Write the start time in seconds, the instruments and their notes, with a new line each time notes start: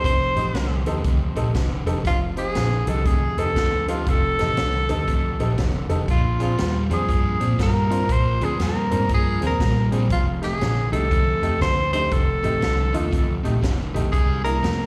0.04 fingered electric bass F1, overdriven electric guitar F2 C3, tenor saxophone C5, kick, closed hi-hat
0.36 fingered electric bass A1, overdriven electric guitar F2 C3, upright piano D#4 G4 C5, closed hi-hat
0.54 fingered electric bass C2, overdriven electric guitar F2 D3, snare, closed hi-hat
0.86 fingered electric bass D#2, overdriven electric guitar F2 D3, upright piano D#4 G4 A4, closed hi-hat
1.04 fingered electric bass D2, overdriven electric guitar F2 C3, kick, closed hi-hat
1.35 fingered electric bass A#1, overdriven electric guitar F2 C3, upright piano D#4 G4 A4, closed hi-hat
1.54 fingered electric bass F1, overdriven electric guitar F2 D3, kick, snare, closed hi-hat
1.86 fingered electric bass F1, overdriven electric guitar F2 D3, upright piano D#4 G4 A4, closed hi-hat
2.04 fingered electric bass F1, overdriven electric guitar F2 C3, tenor saxophone F4, kick, closed hi-hat
2.36 overdriven electric guitar F2 C3, upright piano D#4 G4 C5, tenor saxophone G#4, closed hi-hat
2.55 fingered electric bass A#1, overdriven electric guitar F2 D3, snare, closed hi-hat
2.86 fingered electric bass C2, overdriven electric guitar F2 D3, upright piano D#4 G4 A4, tenor saxophone A4, closed hi-hat
3.05 fingered electric bass D2, overdriven electric guitar F2 C3, tenor saxophone G#4, kick, closed hi-hat
3.37 fingered electric bass F2, overdriven electric guitar F2 C3, upright piano D#4 G4 A4, tenor saxophone A4, closed hi-hat
3.56 fingered electric bass D2, overdriven electric guitar F2 D3, kick, snare, closed hi-hat
3.88 overdriven electric guitar F2 D3, upright piano D#4 G4 A4, tenor saxophone F4, closed hi-hat
4.06 fingered electric bass F1, overdriven electric guitar F2 C3, tenor saxophone A4, kick, closed hi-hat
4.39 fingered electric bass A1, overdriven electric guitar F2 C3, upright piano D#4 G4 A4, snare, closed hi-hat
4.57 fingered electric bass C2, overdriven electric guitar F2 D3, snare, closed hi-hat
4.88 fingered electric bass D#2, overdriven electric guitar F2 D3, upright piano D#4 G4 A4, closed hi-hat
5.07 fingered electric bass D2, overdriven electric guitar F2 C3, kick, closed hi-hat
5.39 fingered electric bass A#1, overdriven electric guitar F2 C3, upright piano D#4 G4 A4, closed hi-hat
5.57 fingered electric bass F1, overdriven electric guitar F2 D3, kick, snare, closed hi-hat
5.89 fingered electric bass F1, overdriven electric guitar F2 D3, upright piano D#4 G4 A4, closed hi-hat
6.08 fingered electric bass A#1, overdriven electric guitar A#2 F3, tenor saxophone F4, kick, closed hi-hat
6.39 overdriven electric guitar A#2 F3, upright piano C4 D4 G#4, tenor saxophone F4, closed hi-hat
6.57 fingered electric bass D#2, overdriven electric guitar A#2 G3, snare, closed hi-hat
6.90 fingered electric bass F2, overdriven electric guitar A#2 G3, upright piano C4 D4 G#4, tenor saxophone G#4, closed hi-hat
7.08 fingered electric bass G2, overdriven electric guitar A#2 F3, kick, closed hi-hat
7.40 overdriven electric guitar A#2 F3, fingered electric bass A#2, upright piano C4 D4 G#4, closed hi-hat
7.58 fingered electric bass G2, overdriven electric guitar A#2 G3, kick, snare, closed hi-hat
7.62 tenor saxophone A#4
7.90 overdriven electric guitar A#2 G3, upright piano C4 D4 F4, closed hi-hat
8.09 fingered electric bass A#1, overdriven electric guitar A#2 F3, tenor saxophone C5, kick, closed hi-hat
8.41 fingered electric bass D2, overdriven electric guitar A#2 F3, upright piano C4 D4 G#4, tenor saxophone G#4, closed hi-hat
8.59 fingered electric bass F2, overdriven electric guitar A#2 G3, tenor saxophone A#4, snare, closed hi-hat
8.91 fingered electric bass G#2, overdriven electric guitar A#2 G3, upright piano C4 D4 A#4, closed hi-hat
9.09 fingered electric bass G2, overdriven electric guitar A#2 F3, kick, closed hi-hat
9.14 tenor saxophone G#4
9.41 fingered electric bass D#2, overdriven electric guitar A#2 F3, upright piano C4 D4 G#4, closed hi-hat
9.47 tenor saxophone A#4
9.60 fingered electric bass A#1, overdriven electric guitar A#2 G3, kick, snare, closed hi-hat
9.92 fingered electric bass A#1, overdriven electric guitar A#2 G3, upright piano C4 D4 G#4, closed hi-hat
10.10 fingered electric bass F1, overdriven electric guitar F2 C3, tenor saxophone F4, kick, closed hi-hat
10.41 overdriven electric guitar F2 C3, upright piano A3 D#4 G4, tenor saxophone G#4, snare, closed hi-hat
10.60 fingered electric bass A#1, overdriven electric guitar F2 D3, snare, closed hi-hat
10.92 fingered electric bass C2, overdriven electric guitar F2 D3, upright piano A3 D#4 G4, tenor saxophone A4, closed hi-hat
11.11 fingered electric bass D2, overdriven electric guitar F2 C3, kick, closed hi-hat
11.42 overdriven electric guitar F2 C3, fingered electric bass F2, upright piano A3 D#4 G4, closed hi-hat
11.60 fingered electric bass D2, overdriven electric guitar F2 D3, tenor saxophone C5, kick, snare, closed hi-hat
11.93 overdriven electric guitar F2 D3, upright piano A3 D#4 G4, tenor saxophone C5, closed hi-hat
12.11 fingered electric bass F1, overdriven electric guitar F2 C3, tenor saxophone A4, kick, closed hi-hat
12.43 fingered electric bass A1, overdriven electric guitar F2 C3, upright piano A3 D#4 G4, closed hi-hat
12.61 fingered electric bass C2, overdriven electric guitar F2 D3, snare, closed hi-hat
12.92 fingered electric bass D#2, overdriven electric guitar F2 D3, upright piano A3 D#4 F4, closed hi-hat
13.11 fingered electric bass D2, overdriven electric guitar F2 C3, kick, closed hi-hat
13.43 fingered electric bass A#1, overdriven electric guitar F2 C3, upright piano A3 D#4 G4, closed hi-hat
13.61 fingered electric bass F1, overdriven electric guitar F2 D3, kick, snare, closed hi-hat
13.93 fingered electric bass B1, overdriven electric guitar F2 D3, upright piano A3 D#4 G4, closed hi-hat
14.12 fingered electric bass C2, overdriven electric guitar C3 G3, tenor saxophone G#4, kick, closed hi-hat
14.44 overdriven electric guitar C3 G3, upright piano A#3 D4 E4, tenor saxophone A#4, closed hi-hat
14.62 fingered electric bass F2, overdriven electric guitar C3 A3, snare, closed hi-hat